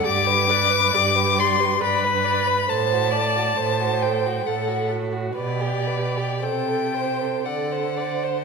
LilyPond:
<<
  \new Staff \with { instrumentName = "Violin" } { \time 3/4 \key g \major \tempo 4 = 67 d'''4. c'''8 b''4 | a''4. g''8 fis''8 r8 | d''4 g''4 fis''4 | }
  \new Staff \with { instrumentName = "Violin" } { \time 3/4 \key g \major d''16 b'16 d''16 b'16 d''16 b'16 d''16 b'16 d''16 b'16 d''16 b'16 | a'16 fis'16 a'16 fis'16 a'16 fis'16 a'16 fis'16 a'16 fis'16 a'16 fis'16 | b'16 g'16 b'16 g'16 c''16 a'16 c''16 a'16 d''16 c''16 d''16 c''16 | }
  \new Staff \with { instrumentName = "Viola" } { \time 3/4 \key g \major g'8 b'8 g'4 b'4 | c''8 d''8 c''4 a'8 fis'8 | g'4 a'8 c''8 a'8 c''8 | }
  \new Staff \with { instrumentName = "Cello" } { \clef bass \time 3/4 \key g \major g,4 g,4 g,4 | a,4 a,4 a,4 | b,4 c4 d4 | }
>>